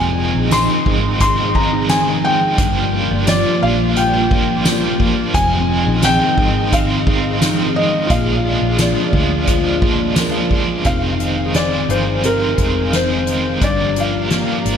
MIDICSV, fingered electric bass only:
0, 0, Header, 1, 2, 480
1, 0, Start_track
1, 0, Tempo, 689655
1, 1799, Time_signature, 4, 2, 24, 8
1, 10280, End_track
2, 0, Start_track
2, 0, Title_t, "Fingered electric bass"
2, 0, Program_c, 0, 33
2, 0, Note_on_c, 0, 29, 109
2, 222, Note_off_c, 0, 29, 0
2, 244, Note_on_c, 0, 34, 81
2, 469, Note_off_c, 0, 34, 0
2, 598, Note_on_c, 0, 32, 90
2, 1771, Note_off_c, 0, 32, 0
2, 1798, Note_on_c, 0, 31, 97
2, 2140, Note_off_c, 0, 31, 0
2, 2164, Note_on_c, 0, 31, 96
2, 2390, Note_off_c, 0, 31, 0
2, 2524, Note_on_c, 0, 34, 82
2, 3694, Note_off_c, 0, 34, 0
2, 3722, Note_on_c, 0, 29, 100
2, 4063, Note_off_c, 0, 29, 0
2, 4084, Note_on_c, 0, 34, 102
2, 4309, Note_off_c, 0, 34, 0
2, 4438, Note_on_c, 0, 32, 95
2, 5611, Note_off_c, 0, 32, 0
2, 5638, Note_on_c, 0, 34, 107
2, 5981, Note_off_c, 0, 34, 0
2, 5997, Note_on_c, 0, 34, 88
2, 6226, Note_off_c, 0, 34, 0
2, 6355, Note_on_c, 0, 38, 87
2, 7529, Note_off_c, 0, 38, 0
2, 7555, Note_on_c, 0, 29, 87
2, 8249, Note_off_c, 0, 29, 0
2, 8274, Note_on_c, 0, 31, 75
2, 8732, Note_off_c, 0, 31, 0
2, 8757, Note_on_c, 0, 29, 85
2, 9450, Note_off_c, 0, 29, 0
2, 9478, Note_on_c, 0, 31, 92
2, 10051, Note_off_c, 0, 31, 0
2, 10199, Note_on_c, 0, 32, 79
2, 10280, Note_off_c, 0, 32, 0
2, 10280, End_track
0, 0, End_of_file